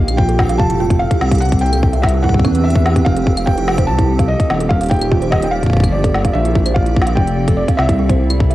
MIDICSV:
0, 0, Header, 1, 7, 480
1, 0, Start_track
1, 0, Tempo, 410959
1, 1655, Time_signature, 4, 2, 24, 8
1, 9985, End_track
2, 0, Start_track
2, 0, Title_t, "Felt piano"
2, 0, Program_c, 0, 0
2, 0, Note_on_c, 0, 77, 107
2, 201, Note_on_c, 0, 79, 109
2, 223, Note_off_c, 0, 77, 0
2, 679, Note_on_c, 0, 81, 104
2, 702, Note_off_c, 0, 79, 0
2, 1133, Note_off_c, 0, 81, 0
2, 1159, Note_on_c, 0, 77, 104
2, 1639, Note_on_c, 0, 78, 107
2, 1662, Note_off_c, 0, 77, 0
2, 1870, Note_off_c, 0, 78, 0
2, 1880, Note_on_c, 0, 79, 108
2, 2360, Note_on_c, 0, 76, 96
2, 2382, Note_off_c, 0, 79, 0
2, 2419, Note_off_c, 0, 76, 0
2, 2599, Note_on_c, 0, 78, 97
2, 3079, Note_on_c, 0, 76, 99
2, 3102, Note_off_c, 0, 78, 0
2, 3560, Note_on_c, 0, 77, 107
2, 3582, Note_off_c, 0, 76, 0
2, 4040, Note_on_c, 0, 79, 103
2, 4062, Note_off_c, 0, 77, 0
2, 4519, Note_on_c, 0, 81, 103
2, 4542, Note_off_c, 0, 79, 0
2, 5001, Note_on_c, 0, 75, 90
2, 5022, Note_off_c, 0, 81, 0
2, 5480, Note_on_c, 0, 77, 104
2, 5503, Note_off_c, 0, 75, 0
2, 5719, Note_on_c, 0, 79, 105
2, 5735, Note_off_c, 0, 77, 0
2, 6200, Note_on_c, 0, 75, 90
2, 6222, Note_off_c, 0, 79, 0
2, 6354, Note_on_c, 0, 79, 77
2, 6371, Note_off_c, 0, 75, 0
2, 6439, Note_on_c, 0, 77, 98
2, 6445, Note_off_c, 0, 79, 0
2, 6893, Note_off_c, 0, 77, 0
2, 6919, Note_on_c, 0, 74, 88
2, 7398, Note_on_c, 0, 76, 101
2, 7422, Note_off_c, 0, 74, 0
2, 7877, Note_on_c, 0, 77, 98
2, 7901, Note_off_c, 0, 76, 0
2, 8357, Note_on_c, 0, 79, 96
2, 8381, Note_off_c, 0, 77, 0
2, 8838, Note_on_c, 0, 74, 85
2, 8861, Note_off_c, 0, 79, 0
2, 8897, Note_off_c, 0, 74, 0
2, 9077, Note_on_c, 0, 76, 100
2, 9985, Note_off_c, 0, 76, 0
2, 9985, End_track
3, 0, Start_track
3, 0, Title_t, "Kalimba"
3, 0, Program_c, 1, 108
3, 335, Note_on_c, 1, 69, 76
3, 386, Note_off_c, 1, 69, 0
3, 576, Note_on_c, 1, 77, 81
3, 627, Note_off_c, 1, 77, 0
3, 697, Note_on_c, 1, 77, 86
3, 810, Note_off_c, 1, 77, 0
3, 817, Note_on_c, 1, 64, 79
3, 902, Note_off_c, 1, 64, 0
3, 938, Note_on_c, 1, 65, 108
3, 988, Note_off_c, 1, 65, 0
3, 1057, Note_on_c, 1, 65, 78
3, 1107, Note_off_c, 1, 65, 0
3, 1298, Note_on_c, 1, 64, 82
3, 1348, Note_off_c, 1, 64, 0
3, 1538, Note_on_c, 1, 77, 78
3, 1588, Note_off_c, 1, 77, 0
3, 2017, Note_on_c, 1, 69, 78
3, 2067, Note_off_c, 1, 69, 0
3, 2257, Note_on_c, 1, 76, 77
3, 2308, Note_off_c, 1, 76, 0
3, 2376, Note_on_c, 1, 76, 76
3, 2490, Note_off_c, 1, 76, 0
3, 2497, Note_on_c, 1, 64, 78
3, 2582, Note_off_c, 1, 64, 0
3, 2617, Note_on_c, 1, 64, 100
3, 2667, Note_off_c, 1, 64, 0
3, 2737, Note_on_c, 1, 64, 79
3, 2787, Note_off_c, 1, 64, 0
3, 2856, Note_on_c, 1, 60, 105
3, 2941, Note_off_c, 1, 60, 0
3, 2979, Note_on_c, 1, 60, 78
3, 3063, Note_off_c, 1, 60, 0
3, 3097, Note_on_c, 1, 76, 85
3, 3182, Note_off_c, 1, 76, 0
3, 3217, Note_on_c, 1, 64, 106
3, 3302, Note_off_c, 1, 64, 0
3, 3458, Note_on_c, 1, 60, 75
3, 3570, Note_off_c, 1, 60, 0
3, 3698, Note_on_c, 1, 69, 79
3, 3748, Note_off_c, 1, 69, 0
3, 3938, Note_on_c, 1, 77, 77
3, 3988, Note_off_c, 1, 77, 0
3, 4057, Note_on_c, 1, 77, 85
3, 4170, Note_off_c, 1, 77, 0
3, 4176, Note_on_c, 1, 64, 77
3, 4261, Note_off_c, 1, 64, 0
3, 4296, Note_on_c, 1, 65, 97
3, 4347, Note_off_c, 1, 65, 0
3, 4417, Note_on_c, 1, 72, 79
3, 4502, Note_off_c, 1, 72, 0
3, 4656, Note_on_c, 1, 64, 76
3, 4707, Note_off_c, 1, 64, 0
3, 4897, Note_on_c, 1, 77, 77
3, 4948, Note_off_c, 1, 77, 0
3, 5376, Note_on_c, 1, 69, 74
3, 5427, Note_off_c, 1, 69, 0
3, 5617, Note_on_c, 1, 77, 81
3, 5667, Note_off_c, 1, 77, 0
3, 5736, Note_on_c, 1, 77, 78
3, 5849, Note_off_c, 1, 77, 0
3, 5855, Note_on_c, 1, 63, 77
3, 5941, Note_off_c, 1, 63, 0
3, 5974, Note_on_c, 1, 65, 107
3, 6026, Note_off_c, 1, 65, 0
3, 6094, Note_on_c, 1, 72, 80
3, 6180, Note_off_c, 1, 72, 0
3, 6335, Note_on_c, 1, 63, 78
3, 6387, Note_off_c, 1, 63, 0
3, 6575, Note_on_c, 1, 77, 78
3, 6627, Note_off_c, 1, 77, 0
3, 7055, Note_on_c, 1, 69, 78
3, 7106, Note_off_c, 1, 69, 0
3, 7296, Note_on_c, 1, 77, 77
3, 7347, Note_off_c, 1, 77, 0
3, 7417, Note_on_c, 1, 77, 82
3, 7530, Note_off_c, 1, 77, 0
3, 7537, Note_on_c, 1, 64, 79
3, 7621, Note_off_c, 1, 64, 0
3, 7655, Note_on_c, 1, 65, 101
3, 7706, Note_off_c, 1, 65, 0
3, 7775, Note_on_c, 1, 72, 80
3, 7861, Note_off_c, 1, 72, 0
3, 8015, Note_on_c, 1, 64, 76
3, 8067, Note_off_c, 1, 64, 0
3, 8255, Note_on_c, 1, 77, 78
3, 8306, Note_off_c, 1, 77, 0
3, 8735, Note_on_c, 1, 69, 77
3, 8787, Note_off_c, 1, 69, 0
3, 8975, Note_on_c, 1, 77, 78
3, 9027, Note_off_c, 1, 77, 0
3, 9094, Note_on_c, 1, 77, 82
3, 9209, Note_off_c, 1, 77, 0
3, 9213, Note_on_c, 1, 64, 74
3, 9300, Note_off_c, 1, 64, 0
3, 9333, Note_on_c, 1, 64, 94
3, 9385, Note_off_c, 1, 64, 0
3, 9454, Note_on_c, 1, 72, 78
3, 9540, Note_off_c, 1, 72, 0
3, 9695, Note_on_c, 1, 64, 76
3, 9746, Note_off_c, 1, 64, 0
3, 9935, Note_on_c, 1, 76, 81
3, 9985, Note_off_c, 1, 76, 0
3, 9985, End_track
4, 0, Start_track
4, 0, Title_t, "Synth texture"
4, 0, Program_c, 2, 99
4, 0, Note_on_c, 2, 67, 83
4, 9985, Note_off_c, 2, 67, 0
4, 9985, End_track
5, 0, Start_track
5, 0, Title_t, "Ambient pad"
5, 0, Program_c, 3, 92
5, 0, Note_on_c, 3, 46, 83
5, 0, Note_on_c, 3, 58, 83
5, 0, Note_on_c, 3, 60, 72
5, 0, Note_on_c, 3, 65, 82
5, 0, Note_on_c, 3, 67, 70
5, 0, Note_on_c, 3, 77, 87
5, 70, Note_on_c, 3, 69, 85
5, 501, Note_off_c, 3, 65, 0
5, 502, Note_off_c, 3, 67, 0
5, 1654, Note_off_c, 3, 58, 0
5, 1655, Note_off_c, 3, 46, 0
5, 1658, Note_on_c, 3, 48, 77
5, 1957, Note_on_c, 3, 88, 88
5, 1960, Note_on_c, 3, 62, 78
5, 2048, Note_on_c, 3, 71, 75
5, 2422, Note_off_c, 3, 77, 0
5, 2424, Note_off_c, 3, 69, 0
5, 3574, Note_on_c, 3, 53, 71
5, 3576, Note_off_c, 3, 48, 0
5, 3875, Note_on_c, 3, 67, 85
5, 4011, Note_on_c, 3, 69, 74
5, 4248, Note_off_c, 3, 62, 0
5, 4248, Note_off_c, 3, 71, 0
5, 5254, Note_on_c, 3, 51, 73
5, 5255, Note_off_c, 3, 53, 0
5, 5256, Note_off_c, 3, 88, 0
5, 5457, Note_on_c, 3, 58, 94
5, 5675, Note_on_c, 3, 53, 84
5, 5773, Note_on_c, 3, 74, 79
5, 6119, Note_off_c, 3, 69, 0
5, 6120, Note_off_c, 3, 60, 0
5, 7414, Note_on_c, 3, 46, 81
5, 7415, Note_off_c, 3, 51, 0
5, 7807, Note_on_c, 3, 69, 82
5, 7835, Note_on_c, 3, 60, 72
5, 8182, Note_off_c, 3, 53, 0
5, 8183, Note_off_c, 3, 67, 0
5, 9333, Note_off_c, 3, 58, 0
5, 9333, Note_on_c, 3, 48, 91
5, 9335, Note_off_c, 3, 46, 0
5, 9426, Note_on_c, 3, 83, 73
5, 9453, Note_on_c, 3, 64, 83
5, 9985, Note_off_c, 3, 48, 0
5, 9985, Note_off_c, 3, 60, 0
5, 9985, Note_off_c, 3, 64, 0
5, 9985, Note_off_c, 3, 69, 0
5, 9985, Note_off_c, 3, 74, 0
5, 9985, Note_off_c, 3, 83, 0
5, 9985, End_track
6, 0, Start_track
6, 0, Title_t, "Detuned saw bass"
6, 0, Program_c, 4, 39
6, 0, Note_on_c, 4, 34, 99
6, 695, Note_on_c, 4, 29, 85
6, 712, Note_off_c, 4, 34, 0
6, 1240, Note_off_c, 4, 29, 0
6, 1417, Note_on_c, 4, 36, 88
6, 2856, Note_on_c, 4, 40, 103
6, 2873, Note_off_c, 4, 36, 0
6, 3521, Note_off_c, 4, 40, 0
6, 3576, Note_on_c, 4, 29, 95
6, 4537, Note_on_c, 4, 36, 87
6, 4554, Note_off_c, 4, 29, 0
6, 5081, Note_off_c, 4, 36, 0
6, 5255, Note_on_c, 4, 27, 81
6, 6696, Note_on_c, 4, 31, 106
6, 6713, Note_off_c, 4, 27, 0
6, 7361, Note_off_c, 4, 31, 0
6, 7416, Note_on_c, 4, 34, 103
6, 8375, Note_on_c, 4, 29, 85
6, 8392, Note_off_c, 4, 34, 0
6, 8920, Note_off_c, 4, 29, 0
6, 9094, Note_on_c, 4, 36, 80
6, 9985, Note_off_c, 4, 36, 0
6, 9985, End_track
7, 0, Start_track
7, 0, Title_t, "Drums"
7, 96, Note_on_c, 9, 42, 65
7, 96, Note_on_c, 9, 75, 50
7, 213, Note_off_c, 9, 42, 0
7, 213, Note_off_c, 9, 75, 0
7, 215, Note_on_c, 9, 36, 118
7, 332, Note_off_c, 9, 36, 0
7, 337, Note_on_c, 9, 42, 38
7, 454, Note_off_c, 9, 42, 0
7, 455, Note_on_c, 9, 36, 127
7, 457, Note_on_c, 9, 38, 127
7, 572, Note_off_c, 9, 36, 0
7, 574, Note_off_c, 9, 38, 0
7, 577, Note_on_c, 9, 42, 69
7, 694, Note_off_c, 9, 42, 0
7, 695, Note_on_c, 9, 36, 117
7, 812, Note_off_c, 9, 36, 0
7, 818, Note_on_c, 9, 42, 40
7, 935, Note_off_c, 9, 42, 0
7, 1056, Note_on_c, 9, 36, 121
7, 1057, Note_on_c, 9, 42, 68
7, 1172, Note_off_c, 9, 36, 0
7, 1174, Note_off_c, 9, 42, 0
7, 1296, Note_on_c, 9, 36, 117
7, 1296, Note_on_c, 9, 42, 54
7, 1412, Note_off_c, 9, 36, 0
7, 1413, Note_off_c, 9, 42, 0
7, 1416, Note_on_c, 9, 38, 122
7, 1533, Note_off_c, 9, 38, 0
7, 1536, Note_on_c, 9, 36, 127
7, 1537, Note_on_c, 9, 42, 63
7, 1576, Note_off_c, 9, 42, 0
7, 1576, Note_on_c, 9, 42, 50
7, 1617, Note_off_c, 9, 42, 0
7, 1617, Note_on_c, 9, 42, 42
7, 1652, Note_off_c, 9, 36, 0
7, 1657, Note_off_c, 9, 42, 0
7, 1657, Note_on_c, 9, 42, 34
7, 1697, Note_off_c, 9, 42, 0
7, 1697, Note_on_c, 9, 42, 28
7, 1737, Note_off_c, 9, 42, 0
7, 1737, Note_on_c, 9, 42, 24
7, 1776, Note_off_c, 9, 42, 0
7, 1776, Note_on_c, 9, 36, 109
7, 1776, Note_on_c, 9, 42, 53
7, 1856, Note_off_c, 9, 42, 0
7, 1856, Note_on_c, 9, 42, 41
7, 1893, Note_off_c, 9, 36, 0
7, 1937, Note_off_c, 9, 42, 0
7, 1937, Note_on_c, 9, 42, 33
7, 2017, Note_off_c, 9, 42, 0
7, 2017, Note_on_c, 9, 42, 64
7, 2017, Note_on_c, 9, 75, 50
7, 2134, Note_off_c, 9, 42, 0
7, 2134, Note_off_c, 9, 75, 0
7, 2136, Note_on_c, 9, 36, 127
7, 2253, Note_off_c, 9, 36, 0
7, 2257, Note_on_c, 9, 42, 35
7, 2373, Note_off_c, 9, 42, 0
7, 2375, Note_on_c, 9, 38, 122
7, 2376, Note_on_c, 9, 36, 116
7, 2435, Note_on_c, 9, 42, 64
7, 2492, Note_off_c, 9, 38, 0
7, 2493, Note_off_c, 9, 36, 0
7, 2552, Note_off_c, 9, 42, 0
7, 2616, Note_on_c, 9, 36, 59
7, 2676, Note_off_c, 9, 36, 0
7, 2676, Note_on_c, 9, 36, 77
7, 2736, Note_off_c, 9, 36, 0
7, 2736, Note_on_c, 9, 36, 93
7, 2796, Note_off_c, 9, 36, 0
7, 2796, Note_on_c, 9, 36, 104
7, 2856, Note_off_c, 9, 36, 0
7, 2856, Note_on_c, 9, 36, 106
7, 2856, Note_on_c, 9, 42, 34
7, 2856, Note_on_c, 9, 75, 35
7, 2973, Note_off_c, 9, 36, 0
7, 2973, Note_off_c, 9, 42, 0
7, 2973, Note_off_c, 9, 75, 0
7, 2976, Note_on_c, 9, 42, 66
7, 3093, Note_off_c, 9, 42, 0
7, 3156, Note_on_c, 9, 42, 51
7, 3216, Note_on_c, 9, 36, 127
7, 3273, Note_off_c, 9, 42, 0
7, 3333, Note_off_c, 9, 36, 0
7, 3335, Note_on_c, 9, 38, 120
7, 3452, Note_off_c, 9, 38, 0
7, 3456, Note_on_c, 9, 36, 106
7, 3456, Note_on_c, 9, 42, 62
7, 3573, Note_off_c, 9, 36, 0
7, 3573, Note_off_c, 9, 42, 0
7, 3576, Note_on_c, 9, 36, 113
7, 3692, Note_off_c, 9, 36, 0
7, 3696, Note_on_c, 9, 42, 54
7, 3813, Note_off_c, 9, 42, 0
7, 3816, Note_on_c, 9, 36, 121
7, 3933, Note_off_c, 9, 36, 0
7, 3937, Note_on_c, 9, 42, 64
7, 3937, Note_on_c, 9, 75, 49
7, 4054, Note_off_c, 9, 42, 0
7, 4054, Note_off_c, 9, 75, 0
7, 4056, Note_on_c, 9, 36, 107
7, 4172, Note_off_c, 9, 36, 0
7, 4177, Note_on_c, 9, 42, 37
7, 4294, Note_off_c, 9, 42, 0
7, 4297, Note_on_c, 9, 38, 120
7, 4414, Note_off_c, 9, 38, 0
7, 4416, Note_on_c, 9, 36, 121
7, 4417, Note_on_c, 9, 42, 62
7, 4532, Note_off_c, 9, 36, 0
7, 4534, Note_off_c, 9, 42, 0
7, 4655, Note_on_c, 9, 36, 115
7, 4657, Note_on_c, 9, 42, 36
7, 4772, Note_off_c, 9, 36, 0
7, 4773, Note_off_c, 9, 42, 0
7, 4896, Note_on_c, 9, 36, 117
7, 4897, Note_on_c, 9, 42, 64
7, 5012, Note_off_c, 9, 36, 0
7, 5014, Note_off_c, 9, 42, 0
7, 5136, Note_on_c, 9, 36, 108
7, 5138, Note_on_c, 9, 42, 53
7, 5252, Note_off_c, 9, 36, 0
7, 5255, Note_off_c, 9, 42, 0
7, 5257, Note_on_c, 9, 38, 119
7, 5373, Note_off_c, 9, 38, 0
7, 5377, Note_on_c, 9, 42, 59
7, 5494, Note_off_c, 9, 42, 0
7, 5495, Note_on_c, 9, 36, 118
7, 5612, Note_off_c, 9, 36, 0
7, 5617, Note_on_c, 9, 42, 50
7, 5646, Note_off_c, 9, 42, 0
7, 5646, Note_on_c, 9, 42, 43
7, 5676, Note_off_c, 9, 42, 0
7, 5676, Note_on_c, 9, 42, 33
7, 5706, Note_off_c, 9, 42, 0
7, 5706, Note_on_c, 9, 42, 28
7, 5735, Note_on_c, 9, 36, 102
7, 5767, Note_off_c, 9, 42, 0
7, 5767, Note_on_c, 9, 42, 18
7, 5797, Note_off_c, 9, 42, 0
7, 5797, Note_on_c, 9, 42, 15
7, 5827, Note_off_c, 9, 42, 0
7, 5827, Note_on_c, 9, 42, 12
7, 5852, Note_off_c, 9, 36, 0
7, 5857, Note_off_c, 9, 42, 0
7, 5857, Note_on_c, 9, 42, 61
7, 5857, Note_on_c, 9, 75, 50
7, 5974, Note_off_c, 9, 42, 0
7, 5974, Note_off_c, 9, 75, 0
7, 5976, Note_on_c, 9, 36, 122
7, 6092, Note_off_c, 9, 36, 0
7, 6097, Note_on_c, 9, 42, 34
7, 6214, Note_off_c, 9, 42, 0
7, 6216, Note_on_c, 9, 36, 109
7, 6217, Note_on_c, 9, 38, 116
7, 6332, Note_off_c, 9, 36, 0
7, 6334, Note_off_c, 9, 38, 0
7, 6337, Note_on_c, 9, 42, 64
7, 6454, Note_off_c, 9, 42, 0
7, 6575, Note_on_c, 9, 36, 54
7, 6577, Note_on_c, 9, 42, 36
7, 6615, Note_off_c, 9, 36, 0
7, 6615, Note_on_c, 9, 36, 65
7, 6655, Note_off_c, 9, 36, 0
7, 6655, Note_on_c, 9, 36, 75
7, 6694, Note_off_c, 9, 42, 0
7, 6695, Note_off_c, 9, 36, 0
7, 6695, Note_on_c, 9, 36, 84
7, 6735, Note_off_c, 9, 36, 0
7, 6735, Note_on_c, 9, 36, 92
7, 6775, Note_off_c, 9, 36, 0
7, 6775, Note_on_c, 9, 36, 103
7, 6815, Note_off_c, 9, 36, 0
7, 6815, Note_on_c, 9, 36, 102
7, 6818, Note_on_c, 9, 42, 65
7, 6818, Note_on_c, 9, 75, 37
7, 6932, Note_off_c, 9, 36, 0
7, 6935, Note_off_c, 9, 42, 0
7, 6935, Note_off_c, 9, 75, 0
7, 7055, Note_on_c, 9, 36, 115
7, 7057, Note_on_c, 9, 42, 53
7, 7172, Note_off_c, 9, 36, 0
7, 7174, Note_off_c, 9, 42, 0
7, 7176, Note_on_c, 9, 38, 108
7, 7293, Note_off_c, 9, 38, 0
7, 7295, Note_on_c, 9, 36, 106
7, 7296, Note_on_c, 9, 42, 66
7, 7412, Note_off_c, 9, 36, 0
7, 7413, Note_off_c, 9, 42, 0
7, 7536, Note_on_c, 9, 42, 54
7, 7652, Note_off_c, 9, 42, 0
7, 7655, Note_on_c, 9, 36, 115
7, 7772, Note_off_c, 9, 36, 0
7, 7776, Note_on_c, 9, 42, 64
7, 7776, Note_on_c, 9, 75, 53
7, 7893, Note_off_c, 9, 42, 0
7, 7893, Note_off_c, 9, 75, 0
7, 7895, Note_on_c, 9, 36, 110
7, 8012, Note_off_c, 9, 36, 0
7, 8016, Note_on_c, 9, 42, 34
7, 8133, Note_off_c, 9, 42, 0
7, 8135, Note_on_c, 9, 36, 120
7, 8196, Note_on_c, 9, 38, 118
7, 8252, Note_off_c, 9, 36, 0
7, 8257, Note_on_c, 9, 42, 65
7, 8312, Note_off_c, 9, 38, 0
7, 8374, Note_off_c, 9, 42, 0
7, 8375, Note_on_c, 9, 36, 105
7, 8492, Note_off_c, 9, 36, 0
7, 8497, Note_on_c, 9, 42, 37
7, 8614, Note_off_c, 9, 42, 0
7, 8735, Note_on_c, 9, 36, 113
7, 8737, Note_on_c, 9, 42, 67
7, 8852, Note_off_c, 9, 36, 0
7, 8853, Note_off_c, 9, 42, 0
7, 8975, Note_on_c, 9, 36, 103
7, 8976, Note_on_c, 9, 42, 54
7, 9092, Note_off_c, 9, 36, 0
7, 9093, Note_off_c, 9, 42, 0
7, 9096, Note_on_c, 9, 38, 118
7, 9213, Note_off_c, 9, 38, 0
7, 9215, Note_on_c, 9, 36, 115
7, 9216, Note_on_c, 9, 42, 62
7, 9332, Note_off_c, 9, 36, 0
7, 9333, Note_off_c, 9, 42, 0
7, 9456, Note_on_c, 9, 36, 104
7, 9457, Note_on_c, 9, 42, 57
7, 9572, Note_off_c, 9, 36, 0
7, 9574, Note_off_c, 9, 42, 0
7, 9697, Note_on_c, 9, 42, 68
7, 9697, Note_on_c, 9, 75, 56
7, 9814, Note_off_c, 9, 42, 0
7, 9814, Note_off_c, 9, 75, 0
7, 9816, Note_on_c, 9, 36, 118
7, 9932, Note_off_c, 9, 36, 0
7, 9938, Note_on_c, 9, 42, 38
7, 9985, Note_off_c, 9, 42, 0
7, 9985, End_track
0, 0, End_of_file